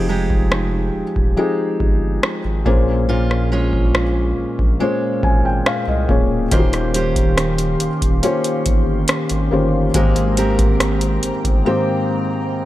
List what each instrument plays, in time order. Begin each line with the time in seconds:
Already playing: sub bass F1, felt piano F3 C4 D#4 G4 G#4, steel-string acoustic guitar F3
0.09 steel-string acoustic guitar G#3 D#4 G4
0.30 kick
0.52 cross-stick
0.95 sub bass D#1
1.16 sub bass D#1, kick
1.36 felt piano F3 C4 D#4 G4 G#4, steel-string acoustic guitar G#3
1.80 sub bass G1, kick
2.23 cross-stick
2.45 sub bass G#1
2.65 sub bass A#1, felt piano A#2 A#3 C#4 G#4 C5, steel-string acoustic guitar A#2, kick
3.09 steel-string acoustic guitar A#2 F4
3.31 cross-stick
3.52 steel-string acoustic guitar G#3 C#4 F4
3.73 kick
3.95 cross-stick
4.38 sub bass A#1
4.59 sub bass A#1, kick
4.80 felt piano A#2 A#3 C#4 G#4 C5, steel-string acoustic guitar G#3
5.23 sub bass G#1, felt piano G#5, kick
5.45 felt piano G5
5.66 felt piano F5, cross-stick
5.87 sub bass C2, felt piano D#5
6.08 sub bass D1, felt piano A#2 A#3 C#4 G#4 C#5, kick
6.51 sub bass D#1, felt piano D#3 A#3 C#4 F4 F#4 C5, steel-string acoustic guitar D#3 C5, ambient pad C#4 G4 F5 C6, kick, closed hi-hat
6.60 felt piano G4
6.73 cross-stick, closed hi-hat
6.94 steel-string acoustic guitar C#4 G4 C5, closed hi-hat
7.16 kick, closed hi-hat
7.38 cross-stick, closed hi-hat
7.58 closed hi-hat
7.80 sub bass D#1, closed hi-hat
8.02 sub bass D#1, kick, closed hi-hat
8.22 felt piano D#3 A#3 C#4 F4 G4 C5, steel-string acoustic guitar C#4, closed hi-hat
8.44 closed hi-hat
8.66 sub bass G1, kick, closed hi-hat
9.08 cross-stick, closed hi-hat
9.30 sub bass G#1, closed hi-hat
9.51 sub bass G1, felt piano D#3 A#3 C#4 F4 G4 C5
9.94 sub bass G#1, felt piano G#2 D#3 A#3 G4 C5, steel-string acoustic guitar G#3 A#4, ambient pad G#3 C5 G5 A#5, kick, closed hi-hat
10.16 closed hi-hat
10.37 steel-string acoustic guitar C4 G4 A#4, closed hi-hat
10.59 kick, closed hi-hat
10.80 cross-stick, closed hi-hat
11.01 closed hi-hat
11.23 sub bass G1, closed hi-hat
11.45 sub bass G1, kick, closed hi-hat
11.65 felt piano G#2 D#3 A#3 G4 C5, steel-string acoustic guitar C4